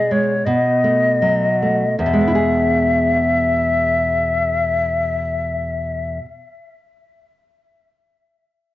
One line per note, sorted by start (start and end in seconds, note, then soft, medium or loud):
0.00 0.43 B2 medium
0.00 0.33 G#4 soft
0.00 0.13 D#5 medium
0.11 0.46 G#3 soft
0.11 0.47 C#5 medium
0.45 1.95 B2 soft
0.45 1.98 D#5 medium
0.84 1.46 A3 soft
1.22 1.84 F#3 soft
1.62 2.00 A3 soft
1.99 6.18 E2 soft
1.99 6.18 E5 medium
2.06 6.25 B2 soft
2.13 6.32 G#3 soft
2.21 6.40 B3 soft
2.27 2.34 E4 soft
2.35 6.54 G#4 soft